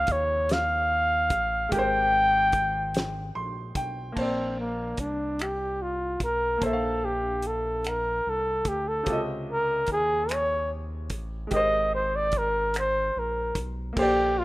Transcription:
0.00 1.67 C3 medium
0.00 1.66 C#3 medium
0.00 1.72 F4 medium
0.00 1.70 D#5 medium
0.00 0.13 F5 loud
0.07 1.32 D#2 loud
0.07 kick loud
0.07 closed hi-hat medium
0.12 0.54 C#5 medium
0.49 1.73 F5 loud
0.49 snare loud
0.49 closed hi-hat medium
1.30 1.68 A1 loud
1.30 kick medium
1.30 closed hi-hat medium
1.69 3.32 G#1 loud
1.69 4.11 G#3 medium
1.69 4.13 G4 medium
1.69 kick loud
1.69 closed hi-hat medium
1.73 4.14 A#4 medium
1.73 3.32 G5 loud
1.79 4.16 C5 medium
2.52 kick medium
2.52 closed hi-hat medium
2.94 snare loud
2.94 closed hi-hat medium
3.35 3.73 A#1 medium
3.35 3.73 C6 medium
3.75 4.13 B1 medium
3.75 4.14 G5 medium
3.75 kick loud
3.75 closed hi-hat medium
4.12 6.56 A#3 medium
4.12 6.57 A5 soft
4.17 4.95 A#1 loud
4.17 4.56 C4 medium
4.17 6.59 C5 medium
4.17 kick medium
4.17 crash medium
4.22 6.60 D5 medium
4.60 5.01 A#3 medium
4.97 6.17 C2 medium
4.97 5.43 D4 medium
4.97 kick medium
4.97 closed hi-hat medium
5.39 5.84 G4 medium
5.39 finger snap loud
5.39 closed hi-hat medium
5.82 6.22 F4 medium
6.20 6.58 B1 medium
6.20 6.65 A#4 medium
6.20 kick medium
6.20 closed hi-hat medium
6.57 9.01 A#3 medium
6.57 9.02 A5 medium
6.62 8.21 A#1 loud
6.62 7.07 A4 medium
6.62 9.03 C5 medium
6.62 kick medium
6.62 closed hi-hat medium
6.66 6.70 E5 medium
6.73 9.08 F5 medium
7.05 7.49 G4 medium
7.42 closed hi-hat medium
7.47 7.90 A4 medium
7.84 finger snap loud
7.84 closed hi-hat medium
7.88 8.31 A#4 medium
8.27 8.63 C2 medium
8.27 8.70 A4 medium
8.65 9.03 D2 medium
8.65 8.90 G4 medium
8.65 kick medium
8.65 closed hi-hat medium
8.88 9.22 A4 medium
9.03 11.47 C3 medium
9.03 11.46 C#3 medium
9.03 kick loud
9.03 closed hi-hat medium
9.08 9.85 C#2 loud
9.08 11.49 F4 medium
9.13 11.51 D#5 medium
9.52 9.88 A#4 loud
9.87 11.12 D#2 medium
9.87 kick medium
9.87 closed hi-hat medium
9.92 10.34 G#4 loud
10.29 10.72 C#5 loud
10.29 finger snap loud
10.29 closed hi-hat medium
11.10 11.47 A1 medium
11.10 kick medium
11.10 closed hi-hat medium
11.47 13.90 G#3 medium
11.47 13.92 G4 medium
11.47 closed hi-hat medium
11.52 13.11 G#1 loud
11.52 13.93 A#4 medium
11.52 11.91 D#5 loud
11.52 kick loud
11.56 13.95 C5 medium
11.95 12.18 C5 medium
12.16 12.40 D5 medium
12.32 kick medium
12.32 closed hi-hat medium
12.38 12.76 A#4 medium
12.74 finger snap loud
12.74 closed hi-hat medium
12.79 13.21 C5 medium
13.17 13.53 A#1 medium
13.17 13.58 A#4 medium
13.55 13.92 B1 medium
13.55 kick loud
13.55 closed hi-hat medium
13.93 14.45 A#3 medium
13.93 14.45 A4 medium
13.93 kick loud
13.93 crash loud
13.97 14.45 A#1 loud
13.97 14.40 G4 loud
13.97 14.45 C5 medium
14.02 14.45 D5 medium
14.39 14.45 F4 loud

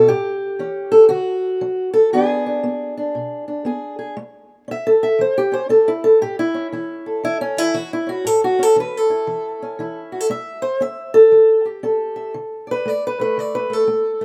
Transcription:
0.08 0.55 A2 medium
0.08 1.10 G4 medium
0.59 1.06 E3 medium
0.59 1.08 C#4 medium
0.92 1.08 A4 medium
1.09 1.57 D3 medium
1.09 1.93 F#4 medium
1.61 2.08 F#3 medium
1.94 2.12 A4 medium
2.13 2.60 E3 medium
2.13 2.62 B3 soft
2.13 2.45 D4 soft
2.13 3.65 G#4 medium
2.46 2.96 D4 soft
2.64 3.11 B3 medium
2.97 3.47 D4 soft
3.15 3.62 B2 medium
3.48 4.15 D4 soft
3.65 4.12 B3 medium
3.65 3.97 G#4 medium
3.99 4.15 G#4 soft
4.17 4.64 A3 medium
4.68 5.15 C#4 medium
4.68 4.86 E5 medium
4.87 5.03 A4 medium
5.03 5.19 E5 medium
5.19 5.66 E3 medium
5.19 5.37 C5 medium
5.38 5.54 G4 medium
5.52 5.69 C#4 soft
5.52 5.70 C5 medium
5.69 6.17 C#4 medium
5.69 5.87 A4 medium
5.88 6.04 E4 medium
6.04 6.21 A4 medium
6.21 6.68 A2 medium
6.21 6.38 G4 medium
6.39 6.66 E4 medium
6.54 7.41 C#4 soft
6.72 7.19 E3 medium
6.72 7.24 E4 soft
7.06 7.74 A4 soft
7.24 7.56 E3 medium
7.24 7.41 E4 loud
7.41 7.58 C#4 medium
7.57 7.74 E3 soft
7.57 7.74 E4 medium
7.74 8.21 E3 medium
7.74 7.91 F#4 medium
7.93 8.09 E4 medium
8.07 8.58 C#4 soft
8.07 8.27 F#4 medium
8.25 8.72 A2 medium
8.25 8.43 A4 medium
8.44 8.63 F#4 medium
8.59 9.60 C#4 soft
8.59 8.78 A4 medium
8.76 9.23 E3 medium
8.76 8.97 B4 medium
8.97 9.97 A4 medium
9.10 9.79 E4 soft
9.27 9.74 E3 medium
9.62 10.28 C#4 soft
9.79 10.26 E3 medium
9.79 10.28 E4 medium
10.12 10.20 F#4 soft
10.20 10.29 A4 soft
10.30 10.77 A3 medium
10.30 10.62 E5 loud
10.62 10.80 C5 medium
10.80 11.28 C#4 medium
10.80 11.13 E5 medium
11.14 11.64 A4 medium
11.32 11.79 E3 medium
11.65 12.32 G4 soft
11.83 12.30 C#4 medium
11.83 12.71 A4 medium
12.16 12.32 E5 soft
12.34 12.81 D3 medium
12.67 12.87 D5 soft
12.71 12.86 B4 medium
12.85 13.17 A3 medium
12.85 13.03 D5 medium
13.07 13.20 B4 loud
13.20 13.69 A3 soft
13.20 13.37 B4 medium
13.37 13.84 D3 medium
13.37 13.54 D5 medium
13.55 13.73 B4 medium
13.70 13.87 A3 soft
13.70 14.25 A4 loud
13.87 14.19 A3 medium
14.21 14.25 A3 soft

